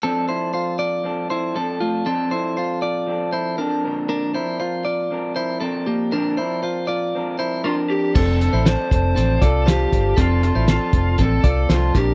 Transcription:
<<
  \new Staff \with { instrumentName = "Lead electric guitar" } { \time 4/4 \key f \major \tempo 4 = 118 r1 | r1 | r1 | r2. f'8 g'8 |
a'4 c''8 c''4 a'8 g'4 | f'8 f'8 f'4 a'4 f'8 g'8 | }
  \new Staff \with { instrumentName = "Clean electric guitar" } { \time 4/4 \key f \major <c' a'>8 <e' c''>8 <f' c''>8 <f' d''>4 <e' c''>8 <c' a'>8 <a f'>8 | <c' a'>8 <e' c''>8 <f' c''>8 <f' d''>4 <e' c''>8 <d' bes'>4 | <d' bes'>8 <e' c''>8 <f' c''>8 <f' d''>4 <e' c''>8 <c' a'>8 <bes g'>8 | <d' bes'>8 <e' c''>8 <f' c''>8 <f' d''>4 <e' c''>8 <d' bes'>4 |
<c' a'>8. <e' c''>16 <c' a'>4 <c' a'>8 <f' d''>8 <f' c''>4 | <c' a'>8. <e' c''>16 <c' a'>4 <c' a'>8 <f' d''>8 <f' c''>8 <d' bes'>8 | }
  \new Staff \with { instrumentName = "Clean electric guitar" } { \time 4/4 \key f \major <f c' d' a'>2 <f c' d' a'>4 <f c' d' a'>4 | <f c' d' a'>2 <f c' d' a'>4 <f c' d' a'>8 <bes, d f c' d' bes'>8~ | <bes, d f c' d' bes'>8 <f c' d' bes'>4. <f c' d' bes'>4 <f c' d' bes'>4 | <bes, d f c' d' bes'>8 <f c' d' bes'>4. <f c' d' bes'>4 <f c' d' bes'>4 |
<f c' d' a'>8 <c' d' a'>8 <f c' d' a'>8 <c' d' a'>8 <f c' d' a'>8 <c' d' a'>8 <f c' d' a'>8 <c' d' a'>8 | <f c' d' a'>8 <c' d' a'>8 <f c' d' a'>8 <c' d' a'>8 <f c' d' a'>8 <c' d' a'>8 <f c' d' a'>8 <f c' d' bes'>8 | }
  \new Staff \with { instrumentName = "Fingered electric bass" } { \clef bass \time 4/4 \key f \major r1 | r1 | r1 | r1 |
f,,8. a,,8 r16 f,,8 a,,8 c,4 g,,8 | f,,8. a,,8 r16 f,,8 a,,8 c,8 c,8 bes,,8 | }
  \new DrumStaff \with { instrumentName = "Drums" } \drummode { \time 4/4 r4 r4 r4 r4 | r4 r4 r4 r4 | r4 r4 r4 r4 | r4 r4 r4 r4 |
<cymc bd>8 hh8 <hh sn>8 <hh bd>8 hh8 <hh bd>8 <hh sn>8 <hh bd>8 | <hh bd>8 hh8 <hh sn>8 <hh bd>8 <hh bd>8 <hh bd>8 <hh sn>8 <hh bd>8 | }
>>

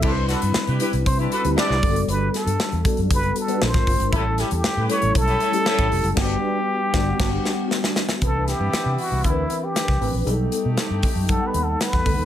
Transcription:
<<
  \new Staff \with { instrumentName = "Muted trumpet" } { \time 4/4 \key c \lydian \tempo 4 = 117 c''8 b'4 r8 c''8 b'8 d''4 | b'8 a'4 r8 b'8 a'8 c''4 | a'8 g'16 g'8. cis''8 a'2 | g'2.~ g'8 r8 |
a'8 g'4 fis'8 e'8. g'4 r16 | r2 \tuplet 3/2 { a'8 b'8 a'8 } b'4 | }
  \new Staff \with { instrumentName = "Horn section" } { \time 4/4 \key c \lydian <d' e' g'>16 r16 <d' fis' a'>16 r8 <e' g' b'>16 <e' g' b'>16 r8 <d' e' g'>16 <d' fis' a'>16 r16 <d' e' g'>8 r8 | r1 | <cis' e' g'>16 r16 <cis' e' a'>16 r8 <e' g' b'>16 <e' g' b'>16 r8 <cis' e' g'>16 <cis' e' a'>16 r16 <cis' e' g'>8 r8 | r1 |
<g b e'>2.~ <g b e'>8 r8 | <a dis' g'>2.~ <a dis' g'>8 r8 | }
  \new Staff \with { instrumentName = "Tine electric piano" } { \time 4/4 \key c \lydian <g c' d' e' a' b'>4 r8 <g c' d' e' b'>4 r16 <g c' d' e' g'>8. <g a b d' fis' a'>8~ | <g a b d' fis' a'>4 r8 <g b d' fis' a'>4 r16 <g b d' fis' b'>16 <aes c' d' a' bes'>8. r16 | <g a cis' e' a'>4 r8 <g a cis' e' a'>4 r16 <g a cis' e' g' a'>4 r16 | <g b d' fis' b'>8 r4 <g b d' fis'>8 <g b d' fis'>8 r4. |
<e c' d' b'>4. r8 <e c' d' bes' b'>4 r8 <e c' d' b'>16 r16 | <g b dis' aes' a'>4. r8 <g b dis' fis''>4 r8 <g b dis' a'>16 r16 | }
  \new Staff \with { instrumentName = "Fingered electric bass" } { \clef bass \time 4/4 \key c \lydian c,8. g,16 r16 c16 r16 c,16 c8 r16 d,16 r16 c,16 g,,16 fis,,16 | g,,8 r16 g,16 r16 e,16 r16 fis,16 fis,,8 r8 bes,,16 aes,,16 g,,16 aes,,16 | a,,8. e,16 r16 a,16 r16 a,,16 b,,8 r8. a,,16 f,,16 fis,,16 | g,,8 r4 g,,8 g,,8 r4. |
c,8. g,16 r16 c16 r16 c,16 d,8 r8. c,16 a,,16 bes,,16 | b,,8 r16 b,16 r16 g,16 r16 fis,8 r16 dis,8 r16 e,16 d,16 dis,16 | }
  \new DrumStaff \with { instrumentName = "Drums" } \drummode { \time 4/4 <cymc bd>8 <hh sn>16 hh16 sn16 hh16 hh16 hh16 <hh bd>16 hh16 hh16 hh16 sn16 sn16 <hho bd>16 hh16 | hh8 <hh sn>16 hh16 sn16 hh16 <hh bd>16 hh16 <hh bd>16 hh16 hh16 hh16 sn16 <hh bd sn>16 <hho bd>16 hh16 | <hh bd>8 <hh sn>16 hh16 sn8 hh16 hh16 <hh bd>16 hh16 hh16 hh16 sn16 <hh bd>16 hho16 hh16 | <cymc bd sn>4 r8 <bd sn>8 <cymc bd sn>8 sn8 sn16 sn16 sn16 sn16 |
<hh bd>8 <hh sn>8 <hh sn>8 hho8 <hh bd>8 hh8 <hh sn>16 <bd sn>16 hho8 | hh8 hh8 <hh sn>8 <hho bd>8 <hh bd>8 hh8 <hh sn>16 <bd sn>16 <hho bd>8 | }
>>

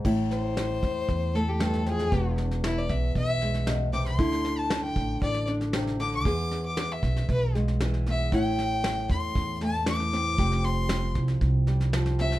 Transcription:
<<
  \new Staff \with { instrumentName = "Fiddle" } { \time 4/4 \key a \minor \tempo 4 = 116 r8 c''2 a'16 g'16 a'8 gis'8~ | gis'8 r8 e'16 d''16 e''8 e''4 r8 d'''16 c'''16~ | c'''8. a''8 g''8. d''8 r4 d'''16 d'''16~ | d'''8. d'''8 e''8. b'8 r4 e''8 |
g''4. c'''4 a''8 d'''4~ | d'''8 c'''4 r2 e''8 | }
  \new Staff \with { instrumentName = "Nylon-string guitar" } { \clef bass \time 4/4 \key a \minor << { e'2~ e'8 a4. | b2~ b8 gis4. | e'2~ e'8 d'4. | gis'2~ gis'8 gis4 b8 |
e'2~ e'8 a4 c'8 | g'2~ g'8 g4 c'8 | } \\ { a,2. g,8 f,8 | e,2. b,8 c8 | d2. c8 d8 | e,2. e4 |
a,2. e4 | f,2. f4 | } >> }
  \new Staff \with { instrumentName = "Upright bass" } { \clef bass \time 4/4 \key a \minor a,,4. e,8 e,2 | e,,4. b,,8 b,,2 | d,4. a,,8 a,,2 | e,4. b,,8 b,,2 |
a,,4. e,8 e,2 | f,,4. c,8 c,2 | }
  \new DrumStaff \with { instrumentName = "Drums" } \drummode { \time 4/4 <cymc bd sn>8 sn8 sn8 <bd sn>8 <bd sn>8 sn8 sn16 sn16 sn16 sn16 | <bd sn>8 sn16 sn16 sn8 <bd sn>8 <bd sn>8 sn16 sn16 sn8 sn16 sn16 | <bd sn>16 sn16 sn8 sn8 <bd sn>8 <bd sn>16 sn16 sn16 sn16 sn16 sn16 sn8 | <bd sn>8 sn8 sn8 <bd sn>16 sn16 <bd sn>8 sn16 sn16 sn16 sn16 sn8 |
<bd sn>8 sn8 sn8 <bd sn>8 <bd sn>8 sn8 sn16 sn16 sn8 | <bd sn>16 sn16 sn8 sn8 <bd sn>16 sn16 <bd sn>8 sn16 sn16 sn16 sn16 sn16 sn16 | }
>>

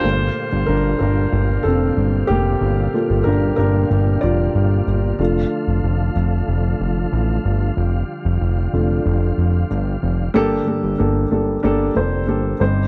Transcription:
<<
  \new Staff \with { instrumentName = "Upright piano" } { \time 4/4 \key g \minor \tempo 4 = 93 c''4 <d' bes'>8 <d' bes'>4 <c' a'>4 <bes g'>8~ | <bes g'>4 <d' bes'>8 <d' bes'>4 <f' d''>4 r8 | r1 | r1 |
<bes d' g' a'>8 <bes d' g' a'>8 <bes d' g' a'>8 <bes d' g' a'>8 <bes d' g' a'>8 <bes d' g' c''>8 <bes d' g' a'>8 <c' ees' g' c''>8 | }
  \new Staff \with { instrumentName = "Upright piano" } { \time 4/4 \key g \minor <a bes f'>8 r2. r8 | r8 <bes f' a'>4. r2 | <a d' f'>4. r2 r8 | r4. <a d' f'>4. r4 |
<g, d>4. r2 <g, g>8 | }
  \new Staff \with { instrumentName = "Tonewheel organ" } { \time 4/4 \key g \minor <g f'>1~ | <g f'>1 | <f f'>1~ | <f f'>1 |
r1 | }
  \new Staff \with { instrumentName = "Tonewheel organ" } { \clef bass \time 4/4 \key g \minor << { bes,1~ | bes,1 | a1 | g1 |
r1 | } \\ { d1~ | d1~ | d1~ | d1 |
r1 | } >> }
  \new Staff \with { instrumentName = "Analog synth bass" } { \clef bass \time 4/4 \key g \minor g,,8 r16 g,,16 g,,8 g,,8 g,,8 f,,8 g,,8 f,,8 | g,,8 r16 g,,16 g,,8 g,,8 g,,8 f,,8 g,,8 g,,8 | f,,8 r16 f,,16 f,,8 f,,8 f,,8 f,,8 a,,8 g,,8 | f,,8 r16 f,,16 f,,8 f,,8 f,,8 f,,8 g,,8 f,,8 |
g,,8 r16 g,,16 g,,8 g,,8 g,,8 f,,8 g,,8 g,,8 | }
>>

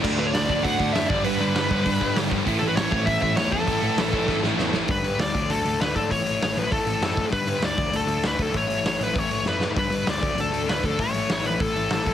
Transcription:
<<
  \new Staff \with { instrumentName = "Lead electric guitar" } { \time 4/4 \key g \lydian \tempo 4 = 197 r8 b'16 cis''16 d''4 fis''4 e''8 d''8 | b'2. r4 | r8 a'16 b'16 cis''4 e''8 e''8 cis''8 a'8~ | a'2~ a'8 r4. |
\key a \major b'4 d''4 a'4 b'8 a'8 | cis''4 cis''8 b'8 a'4 a'8. r16 | b'4 d''4 a'4 b'8 a'8 | cis''4 cis''8 b'8 cis''4 b'8. r16 |
b'4 d''4 a'4 b'8 a'8 | cis''4 cis''8 b'8 a'4 a'8. r16 | }
  \new Staff \with { instrumentName = "Distorted electric guitar" } { \clef bass \time 4/4 \key g \lydian <d a d'>8 <d a d'>8 <d a d'>8 <d a d'>8 <d a d'>8 <d a d'>8 <d a d'>8 <g, d g>8 | <g, d g>8 <g, d g>8 <g, d g>8 <g, d g>8 <g, d g>8 <g, d g>8 <g, d g>8 <g, d g>8 | <a, e a>8 <a, e a>8 <a, e a>8 <a, e a>8 <a, e a>8 <a, e a>8 <a, e a>8 <a, e a>8 | <a, e a>8 <a, e a>8 <a, e a>8 <a, e a>8 <a, e a>8 <a, e a>8 <a, e a>8 <a, e a>8 |
\key a \major <g, d g>8 <g, d g>8 <g, d g>8 <d a d'>8 <d a d'>8 <d a d'>8 <d a d'>8 <d a d'>8 | <a, e a>8 <a, e a>8 <a, e a>8 <a, e a>8 <a, e a>8 <a, e a>8 <a, e a>8 <a, e a>8 | <g, d g>8 <g, d g>8 <g, d g>8 <d a d'>8 <d a d'>8 <d a d'>8 <d a d'>8 <d a d'>8 | <a, e a>8 <a, e a>8 <a, e a>8 <a, e a>8 <a, e a>8 <a, e a>8 <a, e a>8 <a, e a>8 |
<g, d g>8 <g, d g>8 <g, d g>8 <d a d'>8 <d a d'>8 <d a d'>8 <d a d'>8 <d a d'>8 | <a, e a>8 <a, e a>8 <a, e a>8 <a, e a>8 <a, e a>8 <a, e a>8 <a, e a>8 <a, e a>8 | }
  \new Staff \with { instrumentName = "Overdriven electric guitar" } { \clef bass \time 4/4 \key g \lydian <d a d'>8 <d a d'>8 <d a d'>8 <d a d'>8 <d a d'>8 <d a d'>8 <d a d'>8 <g, d g>8 | <g, d g>8 <g, d g>8 <g, d g>8 <g, d g>8 <g, d g>8 <g, d g>8 <g, d g>8 <g, d g>8 | <a, e a>8 <a, e a>8 <a, e a>8 <a, e a>8 <a, e a>8 <a, e a>8 <a, e a>8 <a, e a>8 | <a, e a>8 <a, e a>8 <a, e a>8 <a, e a>8 <a, e a>8 <a, e a>8 <a, e a>8 <a, e a>8 |
\key a \major r1 | r1 | r1 | r1 |
r1 | r1 | }
  \new Staff \with { instrumentName = "Overdriven electric guitar" } { \clef bass \time 4/4 \key g \lydian <d a d'>8 <d a d'>8 <d a d'>8 <d a d'>8 <d a d'>8 <d a d'>8 <d a d'>8 <g, d g>8 | <g, d g>8 <g, d g>8 <g, d g>8 <g, d g>8 <g, d g>8 <g, d g>8 <g, d g>8 <g, d g>8 | <a, e a>8 <a, e a>8 <a, e a>8 <a, e a>8 <a, e a>8 <a, e a>8 <a, e a>8 <a, e a>8 | <a, e a>8 <a, e a>8 <a, e a>8 <a, e a>8 <a, e a>8 <a, e a>8 <a, e a>8 <a, e a>8 |
\key a \major r1 | r1 | r1 | r1 |
r1 | r1 | }
  \new Staff \with { instrumentName = "Tine electric piano" } { \clef bass \time 4/4 \key g \lydian d,8 d,8 d,8 d,8 d,4 fis,8 g,8 | g,8 g8 g,4 g,8 g,8 d8 g,8 | a,,8 a,,8 a,,8 a,,8 a,,4 e,4 | a,,8 a,8 a,,4 a,,8 a,,8 e,8 a,,8 |
\key a \major g,8 g,8 d,8 d,8 d,8 d,8 d,8 gis,8 | a,,4 a,,8 a,,8 a,,8 a,,8 fis,4 | g,8 g,8 d,8 d,8 d,8 d,8 d,8 d,8 | a,,4 a,,8 a,,8 a,,8 a,,8 fis,4 |
g,8 g,8 d,8 d,8 d,8 d,8 d,8 d,8 | a,,4 a,,8 a,,8 a,,8 a,,8 a,,4 | }
  \new DrumStaff \with { instrumentName = "Drums" } \drummode { \time 4/4 <cymc bd>4 <hho sn>8 bd8 <hho bd>8 bd8 <hho sn>8 bd8 | hho4 <hho sn>8 bd8 <hho bd>8 bd8 <hho sn>8 bd8 | <hho bd>4 <hho sn>8 bd8 <hho bd>8 bd8 <hho sn>8 bd8 | <hho bd>4 <hho sn>8 bd8 <bd sn>8 sn8 sn8 sn8 |
<hho bd>8 hho8 <hho sn>8 <hho bd>8 hho8 hho8 <hho sn>8 <hho bd>8 | <hho bd>8 hho8 <hho sn>8 hho8 <hho bd>8 hho8 <hho sn>8 <hho bd>8 | <hho bd>8 hho8 <hho sn>8 <hho bd>8 hho8 hho8 <hho sn>8 <hho bd>8 | <hho bd>8 hho8 <hho sn>8 hho8 <hho bd>8 hho8 sn8 sn8 |
<hho bd>8 hho8 <hho sn>8 <hho bd>8 hho8 hho8 <hho sn>8 <hho bd>8 | <hho bd>8 hho8 <hho sn>8 hho8 <hho bd>8 hho8 <hho sn>8 <hho bd>8 | }
>>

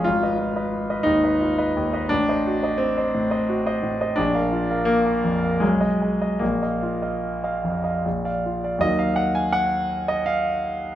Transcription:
\new Staff \with { instrumentName = "Grand piano" } { \time 3/4 \key ees \minor \tempo 4 = 85 << { aes,,16 <ces'' ees''>16 f'16 <ces'' ees''>8 <ces'' ees''>16 ees,16 <ces'' ees''>16 f'16 <ces'' ees''>16 ees,16 <ces'' ees''>16 | a,,16 <c'' ees''>16 fis'16 <c'' ees''>8 <c'' ees''>16 a,16 <c'' ees''>16 fis'16 <c'' ees''>16 a,16 <c'' ees''>16 | bes,,16 <bes' f''>16 f'16 <bes' f''>8 <bes' f''>16 f,16 <bes' f''>16 ces,16 ees''16 aes'16 ees''16 | bes,,16 <ees'' f''>16 f'16 <ees'' f''>8 <ees'' f''>16 f,16 <ees'' f''>16 bes,,16 <d'' f''>16 f'16 <d'' f''>16 |
<ees, ges bes ees'>2. | } \\ { f'4. ees'4. | d'4 c'4 r4 | d'4 bes4 aes4 | bes2 r4 |
ees''16 f''16 ges''16 aes''16 ges''8. ees''16 f''4 | } >> }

